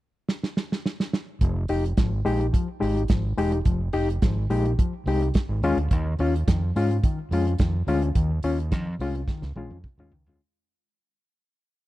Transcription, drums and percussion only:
0.29 snare
0.43 snare
0.57 snare
0.72 snare
0.86 snare
1.00 snare
1.13 snare
1.41 kick, closed hi-hat
1.68 open hi-hat
1.86 closed hi-hat
1.97 kick, snare, closed hi-hat
2.26 open hi-hat
2.41 closed hi-hat
2.54 kick, closed hi-hat
2.82 open hi-hat
2.97 closed hi-hat
3.08 kick, snare, closed hi-hat
3.38 open hi-hat
3.52 closed hi-hat
3.65 kick, closed hi-hat
3.93 open hi-hat
4.10 closed hi-hat
4.22 kick, snare, closed hi-hat
4.50 open hi-hat
4.66 closed hi-hat
4.79 kick, closed hi-hat
5.07 open hi-hat
5.21 closed hi-hat
5.34 kick, snare, closed hi-hat
5.63 open hi-hat
5.78 closed hi-hat
5.91 kick, closed hi-hat
6.19 open hi-hat
6.36 closed hi-hat
6.48 kick, snare, closed hi-hat
6.76 open hi-hat
6.91 closed hi-hat
7.04 kick, closed hi-hat
7.32 open hi-hat
7.47 closed hi-hat
7.58 kick, snare, closed hi-hat
7.88 open hi-hat
8.02 closed hi-hat
8.15 kick, closed hi-hat
8.43 open hi-hat
8.60 closed hi-hat
8.72 kick, snare, closed hi-hat
9.00 open hi-hat
9.15 closed hi-hat
9.27 kick, snare
9.42 snare
9.56 high tom
9.71 high tom
9.84 kick, mid tom
9.99 mid tom
10.12 floor tom
10.27 floor tom

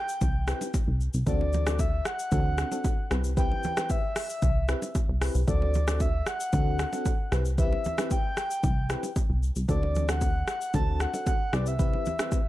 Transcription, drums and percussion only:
0.09 shaker
0.21 kick, low bongo, low conga, shaker
0.47 cross-stick, shaker
0.61 low bongo, shaker
0.74 kick, high bongo, shaker
1.01 shaker
1.14 shaker
1.27 kick, low conga, shaker
1.41 low bongo
1.53 high bongo, low conga, shaker
1.67 cross-stick, low bongo, shaker
1.79 kick, high bongo, shaker
2.05 cross-stick, shaker
2.19 shaker
2.32 kick, low bongo, low conga, shaker
2.58 cross-stick, shaker
2.72 low bongo, shaker
2.84 kick, high bongo, shaker
3.11 cross-stick, shaker
3.24 shaker
3.37 kick, low conga, shaker
3.51 low bongo
3.63 high bongo, low conga, shaker
3.77 cross-stick, low bongo, shaker
3.89 kick, high bongo, shaker
4.16 cross-stick, open hi-hat, shaker
4.30 shaker
4.42 kick, low bongo, low conga, shaker
4.68 cross-stick, shaker
4.82 low bongo, shaker
4.95 kick, high bongo, shaker
5.21 cross-stick, open hi-hat, shaker
5.35 shaker
5.48 kick, low conga, shaker
5.62 low bongo
5.74 high bongo, low conga, shaker
5.88 cross-stick, low bongo, shaker
6.00 kick, high bongo, shaker
6.26 cross-stick, shaker
6.40 shaker
6.53 kick, low bongo, low conga, shaker
6.79 cross-stick, shaker
6.93 low bongo, shaker
7.05 kick, high bongo, shaker
7.32 cross-stick, shaker
7.45 shaker
7.58 kick, low conga, shaker
7.73 low bongo
7.84 high bongo, low conga, shaker
7.98 cross-stick, low bongo, shaker
8.11 kick, high bongo, shaker
8.37 cross-stick, shaker
8.51 shaker
8.63 kick, low bongo, low conga, shaker
8.90 cross-stick, shaker
9.03 low bongo, shaker
9.16 kick, high bongo, shaker
9.43 shaker
9.56 shaker
9.69 kick, low conga, shaker
9.83 low bongo
9.95 high bongo, low conga, shaker
10.09 cross-stick, low bongo, shaker
10.21 kick, high bongo, shaker
10.48 cross-stick, shaker
10.61 shaker
10.74 kick, low bongo, low conga, shaker
11.00 cross-stick, shaker
11.14 low bongo, shaker
11.26 kick, high bongo, shaker
11.53 cross-stick, shaker
11.66 shaker
11.79 kick, low conga, shaker
11.93 low bongo
12.05 high bongo, low conga, shaker
12.19 cross-stick, low bongo, shaker
12.32 kick, high bongo, shaker

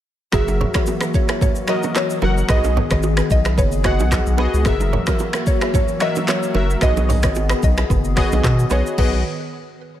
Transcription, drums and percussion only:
0.32 finger snap, kick, cross-stick, low conga, shaker
0.48 low bongo, shaker
0.61 low bongo, low conga
0.74 finger snap, kick, cross-stick, high bongo, shaker
0.86 high bongo, shaker
1.01 finger snap, cross-stick, shaker
1.14 kick, shaker
1.29 finger snap, cross-stick, shaker
1.41 kick, low conga, shaker
1.55 shaker
1.67 finger snap, cross-stick, shaker
1.83 high bongo, low bongo, shaker
1.95 finger snap, cross-stick, clap, high bongo, shaker
2.10 shaker
2.22 low bongo
2.38 shaker
2.49 finger snap, kick, cross-stick, low conga, shaker
2.64 low bongo, shaker
2.77 low bongo, low conga
2.91 finger snap, kick, cross-stick, high bongo, shaker
3.03 high bongo, shaker
3.17 finger snap, cross-stick, shaker
3.30 kick, shaker
3.45 finger snap, cross-stick, shaker
3.58 kick, low conga, shaker
3.72 shaker
3.84 finger snap, kick, cross-stick, shaker
3.99 high bongo, low bongo, shaker
4.11 finger snap, kick, cross-stick, clap, high bongo, shaker
4.27 shaker
4.38 low bongo
4.54 shaker
4.65 finger snap, kick, cross-stick, low conga, shaker
4.80 low bongo, shaker
4.93 low bongo, low conga
5.07 finger snap, kick, cross-stick, high bongo, shaker
5.19 high bongo, shaker
5.33 finger snap, cross-stick, shaker
5.46 kick, shaker
5.61 finger snap, cross-stick, shaker
5.74 kick, low conga, shaker
5.88 shaker
6.00 finger snap, cross-stick, shaker
6.16 high bongo, low bongo, shaker
6.28 finger snap, cross-stick, clap, high bongo, shaker
6.43 shaker
6.55 low bongo
6.70 shaker
6.81 finger snap, kick, cross-stick, low conga, shaker
6.97 low bongo, shaker
7.10 open hi-hat, low bongo, low conga, shaker
7.23 finger snap, kick, cross-stick, high bongo, shaker
7.35 high bongo, shaker
7.49 finger snap, cross-stick, shaker
7.63 kick, shaker
7.77 finger snap, cross-stick, shaker
7.90 kick, low conga, shaker
8.04 shaker
8.17 finger snap, kick, cross-stick, open hi-hat, shaker
8.32 high bongo, low bongo, shaker
8.44 finger snap, kick, cross-stick, clap, high bongo, shaker
8.59 shaker
8.70 low bongo, shaker
8.86 shaker
8.98 kick, crash, low conga

